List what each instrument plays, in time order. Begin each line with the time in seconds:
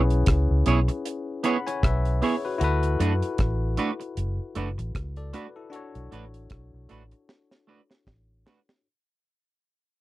Already playing: fingered electric bass B1, tine electric piano C#4 E4 G#4 B4
0.10 closed hi-hat
0.26 fingered electric bass C#2, kick, cross-stick, closed hi-hat
0.51 fingered electric bass C#2
0.66 fingered electric bass B1, clean electric guitar B3 E4 G#4 C#5, closed hi-hat
0.88 muted clean electric guitar stroke, closed hi-hat
1.06 closed hi-hat
1.43 clean electric guitar B3 E4 G#4 C#5, tine electric piano F#5 B5, closed hi-hat
1.67 tine electric piano C#5 G#5, muted clean electric guitar stroke, closed hi-hat
1.83 fingered electric bass B1, tine electric piano B4 E5, kick, cross-stick, closed hi-hat
2.05 closed hi-hat
2.22 clean electric guitar B3 E4 G#4 C#5, tine electric piano G#4 C#5, open hi-hat
2.45 tine electric piano F#4 B4
2.58 fingered electric bass D2, tine electric piano E4 F#4, closed hi-hat
2.62 tine electric piano A4 B4
2.83 closed hi-hat
3.00 fingered electric bass F#2, clean electric guitar A3 D4 F#4 B4, closed hi-hat
3.22 closed hi-hat
3.38 fingered electric bass A1, kick, cross-stick, closed hi-hat
3.77 clean electric guitar A3 D4 F#4 B4, closed hi-hat
4.00 muted clean electric guitar stroke, closed hi-hat
4.17 fingered electric bass F#1, closed hi-hat
4.55 fingered electric bass F#1, clean electric guitar A3 D4 F#4 B4, closed hi-hat
4.78 fingered electric bass A1, muted clean electric guitar stroke, closed hi-hat
4.95 fingered electric bass C#2, kick, cross-stick, closed hi-hat
5.16 tine electric piano A4 D5, closed hi-hat
5.33 clean electric guitar A3 D4 F#4 B4, tine electric piano F#4 B4, cross-stick, closed hi-hat
5.56 tine electric piano E4 A4
5.70 tine electric piano D4 F#4 A4, closed hi-hat
5.76 tine electric piano C#5
5.95 fingered electric bass B1, closed hi-hat
6.12 fingered electric bass A1, clean electric guitar A3 D4 F#4 B4, closed hi-hat
6.34 closed hi-hat
6.50 fingered electric bass B1, kick, cross-stick, closed hi-hat
6.74 fingered electric bass B1
6.89 fingered electric bass A1, clean electric guitar A3 D4 F#4 B4, closed hi-hat
7.11 muted clean electric guitar stroke, closed hi-hat
7.29 snare
7.51 snare
7.67 clean electric guitar A3 D4 F#4 B4
7.90 muted clean electric guitar stroke, snare
8.07 fingered electric bass A1, kick, snare
8.46 clean electric guitar A3 D4 F#4 B4, snare
8.69 snare